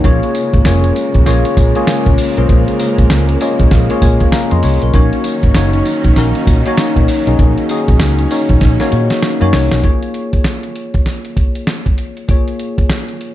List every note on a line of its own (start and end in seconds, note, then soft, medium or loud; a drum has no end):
0.04 0.19 A#1 loud
0.04 4.90 C#3 medium
0.04 4.90 G#3 medium
0.04 0.44 A#3 medium
0.04 4.90 A#3 medium
0.04 0.44 C#4 medium
0.04 0.44 F4 medium
0.04 0.45 G#4 medium
0.04 0.45 C#5 loud
0.04 kick loud
0.04 closed hi-hat medium
0.23 closed hi-hat soft
0.35 closed hi-hat medium
0.35 tambourine medium
0.54 0.63 G#1 medium
0.54 kick loud
0.54 closed hi-hat medium
0.65 0.90 F1 loud
0.65 1.05 A#3 medium
0.65 1.05 C#4 medium
0.65 1.06 F4 medium
0.65 1.06 G#4 medium
0.65 1.06 C#5 medium
0.65 snare loud
0.65 closed hi-hat medium
0.65 tambourine medium
0.84 closed hi-hat medium
0.96 closed hi-hat medium
0.96 tambourine medium
1.14 1.24 A#1 loud
1.14 kick loud
1.14 closed hi-hat soft
1.26 1.42 A#1 loud
1.26 1.56 A#3 loud
1.26 1.56 C#4 medium
1.26 1.56 F4 medium
1.26 1.56 G#4 medium
1.26 1.56 C#5 loud
1.26 snare medium
1.26 closed hi-hat medium
1.26 tambourine medium
1.45 closed hi-hat medium
1.57 1.72 A#2 loud
1.57 kick loud
1.57 closed hi-hat medium
1.57 tambourine medium
1.75 2.12 A#3 medium
1.75 2.13 C#4 medium
1.75 2.13 F4 medium
1.75 2.13 G#4 medium
1.75 2.13 C#5 loud
1.75 closed hi-hat medium
1.87 snare loud
1.87 closed hi-hat medium
1.87 tambourine loud
2.06 2.16 A#2 loud
2.06 kick loud
2.06 closed hi-hat medium
2.18 open hi-hat loud
2.18 tambourine medium
2.37 2.47 B1 medium
2.37 2.66 A#3 medium
2.37 2.66 C#4 medium
2.37 2.66 F4 medium
2.37 2.66 G#4 medium
2.37 2.66 C5 loud
2.37 closed hi-hat soft
2.49 2.64 A#1 loud
2.49 kick loud
2.49 closed hi-hat medium
2.68 closed hi-hat soft
2.80 3.20 A#3 medium
2.80 3.20 C#4 medium
2.80 3.20 F4 medium
2.80 3.20 G#4 medium
2.80 3.20 A#4 medium
2.80 closed hi-hat medium
2.80 tambourine medium
2.98 3.08 A#1 medium
2.98 kick loud
2.98 closed hi-hat medium
3.10 3.35 C#2 loud
3.10 snare loud
3.10 closed hi-hat medium
3.10 tambourine medium
3.29 closed hi-hat medium
3.41 3.70 A#3 medium
3.41 3.70 C#4 medium
3.41 3.71 F4 medium
3.41 3.71 G#4 medium
3.41 3.71 C#5 loud
3.41 3.70 D#5 medium
3.41 closed hi-hat medium
3.41 tambourine medium
3.60 3.69 A#1 medium
3.60 kick loud
3.60 closed hi-hat medium
3.71 3.87 A#1 loud
3.71 3.89 F5 medium
3.71 kick loud
3.71 snare medium
3.71 closed hi-hat medium
3.71 tambourine medium
3.90 4.27 A#3 medium
3.90 4.27 C#4 medium
3.90 4.27 F4 medium
3.90 4.27 G#4 medium
3.90 4.28 C#5 loud
3.90 4.02 F5 medium
3.90 closed hi-hat medium
4.02 4.17 A#2 loud
4.02 4.31 G#5 medium
4.02 kick loud
4.02 closed hi-hat medium
4.02 tambourine medium
4.20 kick medium
4.20 closed hi-hat medium
4.32 4.51 F5 medium
4.32 4.50 A#5 medium
4.32 snare loud
4.32 closed hi-hat medium
4.32 tambourine loud
4.51 4.61 F2 medium
4.51 4.63 D#5 medium
4.51 4.63 C6 medium
4.51 closed hi-hat medium
4.63 4.79 C2 loud
4.63 4.81 C#5 medium
4.63 4.92 C#6 medium
4.63 open hi-hat medium
4.63 tambourine medium
4.82 4.92 B1 medium
4.82 5.11 A#4 medium
4.82 closed hi-hat medium
4.94 5.09 A#1 loud
4.94 9.80 D#3 medium
4.94 9.80 F#3 medium
4.94 5.34 A#3 medium
4.94 7.36 C#4 medium
4.94 5.34 C#4 medium
4.94 5.34 D#4 medium
4.94 5.34 F#4 medium
4.94 5.35 C#5 loud
4.94 kick loud
4.94 closed hi-hat medium
5.13 closed hi-hat medium
5.24 closed hi-hat medium
5.24 tambourine medium
5.43 5.53 G#1 medium
5.43 kick loud
5.43 closed hi-hat medium
5.55 5.80 F#1 medium
5.55 5.95 A#3 medium
5.55 5.95 C#4 medium
5.55 5.96 D#4 medium
5.55 5.96 F#4 medium
5.55 5.96 C#5 loud
5.55 snare loud
5.55 closed hi-hat medium
5.55 tambourine medium
5.73 closed hi-hat medium
5.85 closed hi-hat medium
5.85 tambourine medium
6.04 6.14 A#1 medium
6.04 kick loud
6.04 closed hi-hat medium
6.16 6.32 A#1 loud
6.16 6.46 A#3 loud
6.16 6.46 C#4 medium
6.16 6.46 D#4 medium
6.16 6.46 F#4 medium
6.16 6.46 A#4 loud
6.16 snare medium
6.16 closed hi-hat medium
6.16 tambourine medium
6.35 closed hi-hat medium
6.47 6.62 A#2 loud
6.47 kick loud
6.47 closed hi-hat medium
6.47 tambourine medium
6.66 7.03 A#3 medium
6.66 7.03 C#4 medium
6.66 7.03 D#4 medium
6.66 7.03 F#4 medium
6.66 7.03 C#5 loud
6.66 closed hi-hat medium
6.78 snare loud
6.78 closed hi-hat medium
6.78 tambourine loud
6.96 7.06 A#2 loud
6.96 kick medium
6.96 closed hi-hat medium
7.08 open hi-hat loud
7.08 tambourine medium
7.27 7.37 B1 medium
7.27 7.55 A#3 medium
7.27 7.55 C#4 medium
7.27 7.56 D#4 medium
7.27 7.56 F#4 medium
7.27 7.56 G#4 loud
7.27 closed hi-hat medium
7.38 7.54 A#1 loud
7.38 9.81 C#4 medium
7.38 kick loud
7.38 closed hi-hat medium
7.58 closed hi-hat soft
7.69 8.10 A#3 medium
7.69 8.10 C#4 medium
7.69 8.10 D#4 medium
7.69 8.10 F#4 medium
7.69 8.10 G#4 medium
7.69 closed hi-hat medium
7.69 tambourine medium
7.88 7.98 A#1 medium
7.88 kick loud
7.88 closed hi-hat medium
8.00 8.25 C#2 loud
8.00 snare loud
8.00 closed hi-hat medium
8.00 tambourine loud
8.19 closed hi-hat medium
8.31 8.60 A#3 medium
8.31 8.60 C#4 medium
8.31 8.60 D#4 medium
8.31 8.60 F#4 medium
8.31 8.60 C#5 loud
8.31 open hi-hat medium
8.31 tambourine medium
8.49 8.59 A#1 loud
8.49 kick loud
8.49 closed hi-hat medium
8.61 8.77 A#1 loud
8.61 kick loud
8.61 snare medium
8.61 closed hi-hat medium
8.80 9.17 A#3 medium
8.80 9.17 C#4 medium
8.80 9.17 D#4 medium
8.80 9.17 F#4 medium
8.80 9.17 C#5 loud
8.80 snare medium
8.80 closed hi-hat medium
8.92 9.07 A#2 loud
8.92 closed hi-hat medium
9.10 snare medium
9.10 closed hi-hat medium
9.22 snare loud
9.22 closed hi-hat medium
9.41 9.51 F#2 loud
9.41 9.69 A#3 loud
9.41 9.70 C#4 medium
9.41 9.70 D#4 medium
9.41 9.70 F#4 medium
9.41 9.70 C#5 loud
9.41 closed hi-hat medium
9.53 9.68 C2 medium
9.53 snare loud
9.53 open hi-hat loud
9.71 9.82 B1 medium
9.71 snare medium
9.71 closed hi-hat soft
9.82 12.24 A#3 medium
9.82 12.24 F4 medium
9.82 12.25 G#4 medium
9.82 12.25 C#5 medium
9.82 kick loud
9.82 closed hi-hat medium
10.03 closed hi-hat soft
10.14 closed hi-hat medium
10.33 kick medium
10.33 closed hi-hat medium
10.44 snare loud
10.44 closed hi-hat medium
10.63 closed hi-hat medium
10.76 closed hi-hat medium
10.94 kick medium
10.94 closed hi-hat soft
11.06 snare medium
11.06 closed hi-hat medium
11.25 closed hi-hat medium
11.37 kick medium
11.37 closed hi-hat medium
11.55 closed hi-hat medium
11.67 snare loud
11.67 closed hi-hat medium
11.86 kick medium
11.86 closed hi-hat soft
11.98 closed hi-hat medium
12.17 closed hi-hat soft
12.28 13.35 A#3 medium
12.28 13.35 F4 medium
12.28 13.35 G#4 medium
12.28 13.35 C#5 medium
12.28 kick loud
12.28 closed hi-hat medium
12.48 closed hi-hat soft
12.59 closed hi-hat medium
12.78 kick medium
12.78 closed hi-hat soft
12.90 snare loud
12.90 closed hi-hat medium
13.09 closed hi-hat soft
13.21 closed hi-hat medium